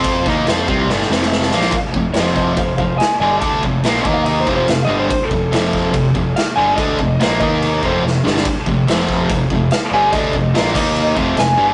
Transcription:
<<
  \new Staff \with { instrumentName = "Electric slide guitar" } { \time 4/4 \key f \mixolydian \tempo 4 = 143 r1 | r4 <c'' ees''>8 <c'' ees''>8 <c'' f''>8 <c'' f''>8 <ees'' aes''>8 <ees'' aes''>8 | a''8 r8 \tuplet 3/2 { r4 f''8 ees''8 c''8 c''8 f''8 ees''8 c''8 } | \tuplet 3/2 { c''8 a'4~ } a'4. r8 f''8 aes''8 |
ees''4. ees''4 r4. | r2. f''8 aes''8 | ees''4. ees''4 r8 aes''4 | }
  \new Staff \with { instrumentName = "Distorted electric guitar" } { \clef bass \time 4/4 \key f \mixolydian <f c' f'>8 <ees bes ees'>8 <f c' f'>8 <c g c'>8 <g, d g>8 <f, c f>4 <bes, f bes>8 | r8 <f, c>8 <f, c f>4 <f, c>8 <f, c>8 r8 <g, d g>8 | <d a d'>8 <f, c>8 <bes, f bes>8 <ees bes ees'>4 <f, c f>8 <f, c>8 <g, d g>8 | r8 <f, c>8 <f, c f>4 <f, c>8 <f, c>8 r8 <g, d g>8 |
<d a d'>8 <f, c>8 <bes, f bes>8 <ees bes ees'>4 <f, c f>8 <f, c>8 <g, d g>8 | r8 <f, c>8 <f, c f>4 <f, c>8 <f, c>8 r8 <g, d g>8 | <d a d'>8 <f, c>8 <bes, f bes>8 <ees bes ees'>4 <f, c f>8 <f, c>8 <g, d g>8 | }
  \new Staff \with { instrumentName = "Fingered electric bass" } { \clef bass \time 4/4 \key f \mixolydian f,8 ees,8 f,8 c,8 g,,8 f,,4 bes,,8 | r8 f,,8 f,,4 f,,8 f,,8 r8 g,,8 | d,8 f,,8 bes,,8 ees,4 f,,8 f,,8 g,,8 | r8 f,,8 f,,4 f,,8 f,,8 r8 g,,8 |
d,8 f,,8 bes,,8 ees,4 f,,8 f,,8 g,,8 | r8 f,,8 f,,4 f,,8 f,,8 r8 g,,8 | d,8 f,,8 bes,,8 ees,4 f,,8 f,,8 g,,8 | }
  \new DrumStaff \with { instrumentName = "Drums" } \drummode { \time 4/4 <cymc bd>8 <bd sn>8 <cymc sn>8 bd8 sn16 sn16 sn16 sn16 sn16 sn16 sn16 sn16 | <cymc bd>8 bd8 <cymc sn>16 sn16 <bd sn>8 <cymc bd>8 bd8 <cymc sn>4 | <cymc bd>8 bd8 <cymc sn>16 sn16 bd8 cymc8 bd8 <cymc sn>4 | <cymc bd>8 bd8 <cymc sn>16 sn16 <bd sn>8 <cymc bd>8 bd8 <cymc sn>4 |
<cymc bd>8 bd8 <cymc sn>8 bd8 cymc8 bd8 sn8 sn16 sn16 | <cymc bd>8 bd8 <cymc sn>16 sn16 <bd sn>8 <cymc bd>8 bd8 <cymc sn>4 | <cymc bd>8 bd8 <cymc sn>16 sn16 <cymc bd>8 cymc8 bd8 <cymc sn>4 | }
>>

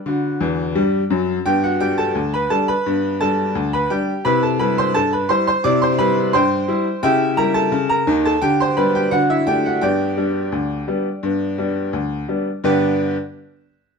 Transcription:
<<
  \new Staff \with { instrumentName = "Upright piano" } { \time 2/4 \key g \major \tempo 4 = 86 <b' g'' b''>4. r8 | <g' g''>16 <fis' fis''>16 <g' g''>16 <a' a''>8 <b' b''>16 <a' a''>16 <b' b''>16~ | <b' b''>8 <a' a''>8. <b' b''>16 <g' g''>8 | <b' b''>16 <a' a''>16 <b' b''>16 <c'' c'''>16 <a' a''>16 <b' b''>16 <c'' c'''>16 <c'' c'''>16 |
<d'' d'''>16 <c'' c'''>16 <b' b''>8 <c'' g'' c'''>4 | <g' e'' g''>8 <ais' ais''>16 <a' a''>8 <ais' ais''>8 <a' a''>16 | <g' g''>16 <c'' c'''>16 <b' b''>16 <g' g''>16 <fis' fis''>16 <e' e''>16 <g' g''>16 <fis' fis''>16 | <g' d'' g''>2~ |
<g' d'' g''>4 r4 | <g, d b d' g' b'>8 r4. | }
  \new Staff \with { instrumentName = "Upright piano" } { \clef bass \time 2/4 \key g \major <d fis'>8 <e, e>8 <g, g>8 <fis, fis>8 | <g, b>8 <g d'>8 d,8 <g d'>8 | <g, b>8 <g d'>8 d,8 <g d'>8 | <c e'>8 <g e'>8 g,8 <g e'>8 |
<c e'>8 <g e'>8 g,8 <g e'>8 | <cis e'>8 <g ais e'>8 cis8 <ees, ees>8 | d8 <g b d'>8 d8 <a d'>8 | <g, b>8 <g b d'>8 d,8 <g b d'>8 |
<g, b>8 <g b d'>8 d,8 <g b d'>8 | r2 | }
>>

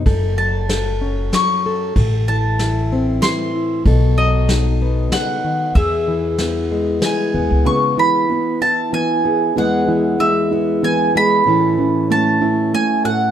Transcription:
<<
  \new Staff \with { instrumentName = "Mandolin" } { \time 3/4 \key e \major \tempo 4 = 95 r8 a''4. cis'''4 | r8 a''4. c'''4 | r8 dis''4. fis''4 | e''2 gis''4 |
cis'''8 b''4 a''8 gis''4 | fis''4 e''4 gis''8 b''8~ | b''4 a''4 gis''8 fis''8 | }
  \new Staff \with { instrumentName = "Felt piano" } { \time 3/4 \key e \major r2. | r2. | r2. | r2. |
b8 e'8 b8 e'8 b8 gis'8 | b8 e'8 b8 e'8 b8 gis'8 | e8 cis'8 a8 cis'8 a8 a'8 | }
  \new Staff \with { instrumentName = "Steel-string acoustic guitar" } { \clef bass \time 3/4 \key e \major << { a'4 a'8 cis'4 a'8 | a'4 e'8 c'4 e'8 | a'4 dis'8 b4. | gis'4 b8 gis4 b8~ |
b4 b8 e'4 b8 | <e gis b gis'>4 gis8 b4 gis8 | <e cis' e' a'>4 cis'8 e'4. | } \\ { fis,8 fis4. fis4 | a,8 e4. e4 | b,8 fis4. cis8 dis8 | e,8 e4. e4 |
cis8 e4. e4 | e,8 e4. e4 | a,8 e2 a,8 | } >> }
  \new Staff \with { instrumentName = "Upright bass" } { \clef bass \time 3/4 \key e \major fis,,2 r4 | a,,2 r4 | b,,2 r4 | e,2 r8 dis,16 cis,16 |
r2. | r2. | r2. | }
  \new DrumStaff \with { instrumentName = "Drums" } \drummode { \time 3/4 <bd cymr>4 <cymr sn>4 <cymr sn>4 | <bd cymr>4 <cymr sn>4 <cymr sn>4 | <bd cymr>4 <cymr sn>4 <cymr sn>4 | <bd cymr>4 <cymr sn>4 <cymr sn>4 |
r4 r4 r4 | r4 r4 r4 | r4 r4 r4 | }
>>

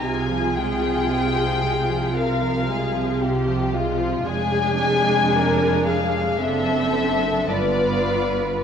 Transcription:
<<
  \new Staff \with { instrumentName = "Violin section" } { \time 4/4 \key f \dorian \tempo 4 = 56 aes''8 g''4. f''4 r4 | aes''4. f''8 e''4 d''4 | }
  \new Staff \with { instrumentName = "Violin section" } { \time 4/4 \key f \dorian aes'2 bes'8 aes'8 g'8 f'8 | aes'4 bes'8 aes'8 a'4 b'4 | }
  \new Staff \with { instrumentName = "Viola section" } { \clef bass \time 4/4 \key f \dorian << { f'1 | d'2 d'8 d'8 f'4 | } \\ { c16 f16 aes16 f16 c16 f16 aes16 f16 c16 f16 aes16 f16 c16 f16 aes16 f16 | aes2 c'4 b4 | } >> }
  \new Staff \with { instrumentName = "Cello section" } { \clef bass \time 4/4 \key f \dorian c1 | f,2 fis,4 g,4 | }
  \new Staff \with { instrumentName = "Double bass section" } { \clef bass \time 4/4 \key f \dorian c,1 | f,,2 fis,,4 g,,4 | }
>>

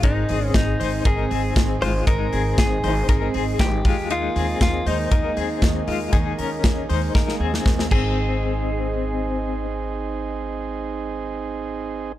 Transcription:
<<
  \new Staff \with { instrumentName = "Clean electric guitar" } { \time 4/4 \key aes \major \tempo 4 = 118 ees'4 ees'4 aes'4 r8 c''8 | bes'4 aes'2 g'4 | f'4 f'8 ees'2~ ees'8~ | ees'2. r8 aes'8~ |
aes'1~ | aes'1 | }
  \new Staff \with { instrumentName = "Clean electric guitar" } { \time 4/4 \key aes \major <aes ees'>8 <c' aes'>4 <ees' c''>8 <ees' bes'>8 <c' aes'>4 <aes f'>8 | <aes ees'>8 <c' aes'>4 <ees' c''>8 <ees' bes'>8 <c' aes'>4 <aes f'>8 | <aes ees'>8 <c' aes'>4 <ees' c''>8 <ees' bes'>8 <c' aes'>4 <aes f'>8 | <ees' aes'>8 <des' bes'>4 <ees' c''>8 <ees' bes'>8 <c' aes'>4 c'8~ |
c'2. r4 | r1 | }
  \new Staff \with { instrumentName = "Transistor combo organ" } { \time 4/4 \key aes \major <c' ees' aes'>1~ | <c' ees' aes'>2.~ <c' ees' aes'>8 <bes ees' aes'>8~ | <bes ees' aes'>1~ | <bes ees' aes'>2.~ <bes ees' aes'>8 <c' ees' aes'>8~ |
<c' ees' aes'>1~ | <c' ees' aes'>1 | }
  \new Staff \with { instrumentName = "Steel-string acoustic guitar" } { \clef bass \time 4/4 \key aes \major <ees aes c' ees'>8 <ees aes c' ees'>4 <ees aes c' ees'>8. <aes, ees aes c' ees'>8. <ees aes c' ees'>4 | <ees aes c' ees'>8 <ees aes c' ees'>4 <ees aes c' ees'>8. <aes, ees aes c' ees'>8. <ees aes c' ees'>8 <ees aes bes ees'>8~ | <ees aes bes ees'>8 <ees aes bes ees'>4 <ees aes bes ees'>8. <ees aes bes ees'>8. <ees aes bes ees'>4 | <ees aes bes ees'>8 <ees aes bes ees'>4 <ees aes bes ees'>8. <ees aes bes ees'>8. <ees aes bes ees'>8 <aes, ees aes c' ees'>8~ |
<aes, ees aes c' ees'>1~ | <aes, ees aes c' ees'>1 | }
  \new Staff \with { instrumentName = "Upright bass" } { \clef bass \time 4/4 \key aes \major aes,,8 aes,,8 aes,,8 aes,,8 aes,,8 aes,,8 aes,,8 aes,,8 | aes,,8 aes,,8 aes,,8 aes,,8 aes,,8 aes,,8 aes,,8 ees,8~ | ees,8 ees,8 ees,8 ees,8 ees,8 ees,8 ees,8 ees,8 | ees,8 ees,8 ees,8 ees,8 ees,8 ees,8 ees,8 aes,,8~ |
aes,,1~ | aes,,1 | }
  \new DrumStaff \with { instrumentName = "Drums" } \drummode { \time 4/4 <hhp bd cymr>8 hho8 <hhp bd cymr sn>8 hho8 <hhp bd cymr>8 hho8 <hhp bd cymr sn>8 hho8 | <hhp bd cymr>8 hho8 <hhp bd cymr sn>8 hho8 <hhp bd cymr>8 hho8 <hhp bd cymr sn>8 <hho bd>8 | <hhp cymr>8 hho8 <hhp bd cymr sn>8 hho8 <hhp bd cymr>8 hho8 <hhp bd cymr sn>8 hho8 | <hhp bd cymr>8 hho8 <hhp bd cymr sn>8 hho8 <bd sn>16 sn8 sn16 <bd sn>16 sn16 <cymc bd>8 |
r4 r4 r4 r4 | r4 r4 r4 r4 | }
>>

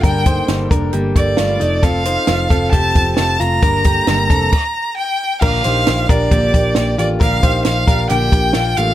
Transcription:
<<
  \new Staff \with { instrumentName = "Violin" } { \time 4/4 \key bes \major \tempo 4 = 134 g''4 r4. d''4. | f''2 a''4 a''8 bes''8~ | bes''2. g''4 | f''4. d''2 d''8 |
f''4 f''4 g''4. f''8 | }
  \new Staff \with { instrumentName = "Clean electric guitar" } { \time 4/4 \key bes \major <d' bes'>8 <ees' c''>4 <d' bes'>8 <bes g'>4 <a f'>8 <a ees'>8 | <c' a'>8 <ees' c''>4 <c' a'>8 <c' g'>4. <a f'>8 | <d' bes'>8 <bes g'>4 <c' a'>8 r2 | <d' bes'>8 <ees' c''>4 <d' bes'>8 <bes g'>4. <a f'>8 |
<d' bes'>8 <ees' c''>4 <d' bes'>8 <bes g'>4 <bes f'>8 <a f'>8 | }
  \new Staff \with { instrumentName = "Steel-string acoustic guitar" } { \time 4/4 \key bes \major <g, d g bes d' a'>8 <g bes d' a'>8 <g, d g bes d' a'>8 <g bes d' a'>8 <g bes d' a'>8 <g bes d' a'>8 <g, d g bes d' a'>8 <c' f' a'>8 | <f a c' f' a'>8 <c' f' a'>8 <f a c' f' a'>8 <c' f' a'>8 <a c' f' a'>8 <c' f' a'>8 <f a c' f' a'>8 <c' f' a'>8 | <g, d g bes d' a'>8 <g bes d' a'>8 <g, d g bes d' a'>8 <g bes d' a'>8 r2 | <bes, d f bes d' g'>8 <f bes d' g'>8 <f bes d' g'>8 <f bes d' g'>8 <bes, d f bes d' g'>8 <f bes d' g'>8 <f bes d' g'>8 <f bes d' g'>8 |
<bes, d f bes d' g'>8 <f bes d' g'>8 <f bes d' g'>8 <f bes d' g'>8 <bes, d f bes d' g'>8 <f bes d' g'>8 <f bes d' g'>8 <f bes d' g'>8 | }
  \new Staff \with { instrumentName = "Picked electric bass" } { \clef bass \time 4/4 \key bes \major g,,4 g,,8 f,,8 g,,8 g,,8 g,,8 f,,8~ | f,,4 f,,8 f,,8 f,,8 f,,8 f,,8 f,,8 | g,,4 g,,8 f,,8 r2 | bes,,8 bes,,8 bes,,8 bes,,8 bes,,8 bes,,8 bes,,8 a,,8 |
bes,,8 bes,,8 bes,,8 bes,,8 bes,,8 bes,,8 bes,,8 a,,8 | }
  \new DrumStaff \with { instrumentName = "Drums" } \drummode { \time 4/4 <hh bd>8 <hh bd>8 <hh sn>8 <hh bd>8 hh8 <hh bd>8 <hh sn>8 hh8 | <hh bd>8 hh8 <hh sn>8 <hh bd>8 <hh bd>8 <hh bd>8 <hh sn>8 hh8 | <hh bd>8 <hh bd>8 <hh sn>8 <hh bd>8 <cymc bd>4 r4 | <cymc bd>8 hh8 <hh sn>8 <hh bd>8 <hh bd>8 <hh bd>8 <hh sn>8 hh8 |
<hh bd>8 <hh bd>8 <hh sn>8 <hh bd>8 hh8 <hh bd>8 <hh sn>8 hh8 | }
>>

